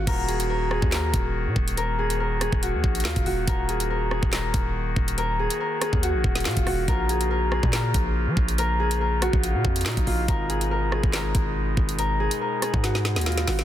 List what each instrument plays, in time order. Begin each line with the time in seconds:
Already playing: harp F#4 G#4
0.07 808-style bass D#1, pipe organ D#3 A#3 F#4, harp A#4, kick, closed hi-hat, crash
0.28 harp G#4, closed hi-hat
0.40 closed hi-hat
0.50 harp A#4
0.71 harp G#4, cross-stick
0.82 808-style bass D#2, kick
0.92 harp A#4, snare, clap, closed hi-hat
1.14 808-style bass D#1, kick, closed hi-hat
1.46 808-style bass A#2
1.56 808-style bass D#1, kick
1.68 closed hi-hat
1.77 harp A#4, closed hi-hat
1.99 harp G#4
2.10 closed hi-hat
2.20 harp A#4
2.41 harp G#4, cross-stick, closed hi-hat
2.52 808-style bass D#1, kick
2.63 harp F#4, closed hi-hat
2.74 808-style bass D#2
2.84 808-style bass A#1, kick
2.95 closed hi-hat
3.00 closed hi-hat
3.05 808-style bass D#2, harp F4, snare, clap, closed hi-hat
3.11 closed hi-hat
3.16 808-style bass D#1, kick, closed hi-hat
3.26 808-style bass D#1, harp F#4, open hi-hat
3.47 808-style bass D#1, harp A#4, kick, closed hi-hat
3.69 harp G#4, closed hi-hat
3.80 closed hi-hat
3.90 harp A#4
4.11 harp G#4, cross-stick
4.23 808-style bass D#1, kick
4.33 harp A#4, snare, clap, closed hi-hat
4.54 808-style bass D#1, kick, closed hi-hat
4.96 808-style bass D#1, kick
5.08 closed hi-hat
5.18 harp A#4, closed hi-hat
5.39 harp G#4
5.50 closed hi-hat
5.60 harp A#4
5.81 harp G#4, cross-stick, closed hi-hat
5.93 808-style bass D#2, kick
6.03 harp F#4, closed hi-hat
6.14 808-style bass A#1
6.24 808-style bass D#1, kick
6.35 snare, closed hi-hat
6.40 closed hi-hat
6.45 808-style bass A#2, harp F4, snare, clap, closed hi-hat
6.51 closed hi-hat
6.57 808-style bass D#1, kick, closed hi-hat
6.67 808-style bass D#1, harp F#4, cross-stick, open hi-hat
6.88 808-style bass A#1, pipe organ C#3 F4, harp A#4, kick, closed hi-hat
7.09 harp G#4, closed hi-hat
7.21 closed hi-hat
7.31 harp A#4
7.52 harp G#4, cross-stick
7.63 808-style bass A#2, kick
7.73 harp A#4, snare, clap, closed hi-hat
7.94 808-style bass A#1, kick, closed hi-hat
8.27 808-style bass F3
8.37 808-style bass A#1, kick
8.48 closed hi-hat
8.58 harp A#4, closed hi-hat
8.80 harp G#4
8.91 closed hi-hat
9.01 harp A#4
9.22 harp F#4, cross-stick, closed hi-hat
9.33 808-style bass A#1, kick
9.43 harp F4, closed hi-hat
9.55 808-style bass A#2
9.65 808-style bass F2, kick
9.76 closed hi-hat
9.81 closed hi-hat
9.86 808-style bass A#2, harp D#4, snare, clap, closed hi-hat
9.92 closed hi-hat
9.97 808-style bass A#1, kick, closed hi-hat
10.07 808-style bass A#1, harp F4, open hi-hat
10.28 808-style bass G#1, pipe organ B2 G#3 D#4, harp A#4, kick, closed hi-hat
10.50 harp G#4, closed hi-hat
10.61 closed hi-hat
10.71 harp A#4
10.92 harp G#4, cross-stick
11.03 808-style bass G#1, kick
11.13 harp A#4, snare, clap, closed hi-hat
11.35 808-style bass G#1, kick, closed hi-hat
11.77 808-style bass G#1, kick
11.89 closed hi-hat
11.99 harp A#4, closed hi-hat
12.20 harp G#4
12.31 closed hi-hat
12.41 harp A#4
12.62 harp G#4, cross-stick, closed hi-hat
12.74 808-style bass G#2, kick
12.84 harp F#4, snare, closed hi-hat
12.95 snare
13.05 snare
13.16 808-style bass D#2, snare, closed hi-hat
13.21 closed hi-hat
13.26 harp F4, snare, closed hi-hat
13.32 closed hi-hat
13.37 snare, closed hi-hat
13.47 808-style bass G#1, harp F#4, snare, open hi-hat
13.59 snare